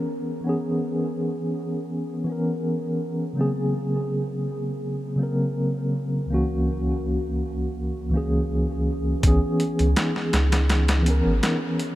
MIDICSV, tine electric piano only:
0, 0, Header, 1, 2, 480
1, 0, Start_track
1, 0, Tempo, 731707
1, 297, Time_signature, 4, 2, 24, 8
1, 7840, End_track
2, 0, Start_track
2, 0, Title_t, "Tine electric piano"
2, 0, Program_c, 0, 4
2, 0, Control_c, 0, 64, 127
2, 0, Note_on_c, 0, 52, 62
2, 0, Note_on_c, 0, 59, 61
2, 0, Note_on_c, 0, 61, 56
2, 0, Note_on_c, 0, 70, 71
2, 256, Note_off_c, 0, 52, 0
2, 264, Note_off_c, 0, 59, 0
2, 270, Note_on_c, 0, 52, 66
2, 274, Note_off_c, 0, 61, 0
2, 281, Note_off_c, 0, 70, 0
2, 291, Note_on_c, 0, 59, 68
2, 306, Note_on_c, 0, 61, 67
2, 323, Note_on_c, 0, 68, 77
2, 1456, Note_off_c, 0, 52, 0
2, 1466, Note_off_c, 0, 59, 0
2, 1471, Note_on_c, 0, 52, 67
2, 1474, Note_off_c, 0, 61, 0
2, 1483, Note_off_c, 0, 68, 0
2, 1488, Note_on_c, 0, 59, 60
2, 1506, Note_on_c, 0, 61, 60
2, 1522, Note_on_c, 0, 70, 65
2, 2176, Note_off_c, 0, 52, 0
2, 2185, Note_off_c, 0, 59, 0
2, 2187, Note_on_c, 0, 49, 74
2, 2194, Note_off_c, 0, 61, 0
2, 2200, Note_on_c, 0, 54, 67
2, 2202, Note_off_c, 0, 70, 0
2, 2211, Note_on_c, 0, 58, 66
2, 2225, Note_on_c, 0, 60, 67
2, 2226, Control_c, 0, 64, 0
2, 2235, Note_on_c, 0, 68, 82
2, 2329, Control_c, 0, 64, 127
2, 3374, Note_off_c, 0, 49, 0
2, 3381, Note_off_c, 0, 54, 0
2, 3384, Note_on_c, 0, 49, 65
2, 3387, Note_off_c, 0, 58, 0
2, 3393, Note_off_c, 0, 60, 0
2, 3394, Note_on_c, 0, 54, 64
2, 3399, Note_off_c, 0, 68, 0
2, 3405, Note_on_c, 0, 58, 59
2, 3421, Note_on_c, 0, 60, 55
2, 3432, Note_on_c, 0, 70, 72
2, 4093, Note_off_c, 0, 49, 0
2, 4098, Note_off_c, 0, 54, 0
2, 4103, Note_off_c, 0, 58, 0
2, 4110, Note_on_c, 0, 37, 70
2, 4112, Note_off_c, 0, 60, 0
2, 4117, Note_off_c, 0, 70, 0
2, 4123, Note_on_c, 0, 52, 68
2, 4135, Note_on_c, 0, 58, 71
2, 4145, Control_c, 0, 64, 0
2, 4149, Note_on_c, 0, 61, 67
2, 4161, Note_on_c, 0, 66, 78
2, 4263, Control_c, 0, 64, 127
2, 5296, Note_off_c, 0, 37, 0
2, 5302, Note_off_c, 0, 52, 0
2, 5309, Note_off_c, 0, 58, 0
2, 5310, Note_on_c, 0, 37, 67
2, 5315, Note_off_c, 0, 61, 0
2, 5321, Note_off_c, 0, 66, 0
2, 5322, Note_on_c, 0, 52, 65
2, 5338, Note_on_c, 0, 58, 63
2, 5350, Note_on_c, 0, 61, 64
2, 5361, Note_on_c, 0, 68, 76
2, 6016, Note_off_c, 0, 37, 0
2, 6022, Note_off_c, 0, 52, 0
2, 6030, Note_off_c, 0, 58, 0
2, 6036, Note_off_c, 0, 61, 0
2, 6037, Note_on_c, 0, 52, 80
2, 6042, Note_off_c, 0, 68, 0
2, 6052, Note_on_c, 0, 59, 72
2, 6064, Control_c, 0, 64, 0
2, 6069, Note_on_c, 0, 61, 72
2, 6085, Note_on_c, 0, 68, 92
2, 6169, Control_c, 0, 64, 127
2, 7219, Note_off_c, 0, 52, 0
2, 7227, Note_off_c, 0, 59, 0
2, 7234, Note_on_c, 0, 52, 71
2, 7235, Note_off_c, 0, 61, 0
2, 7243, Note_off_c, 0, 68, 0
2, 7250, Note_on_c, 0, 59, 67
2, 7268, Note_on_c, 0, 61, 67
2, 7285, Note_on_c, 0, 70, 86
2, 7840, Note_off_c, 0, 52, 0
2, 7840, Note_off_c, 0, 59, 0
2, 7840, Note_off_c, 0, 61, 0
2, 7840, Note_off_c, 0, 70, 0
2, 7840, End_track
0, 0, End_of_file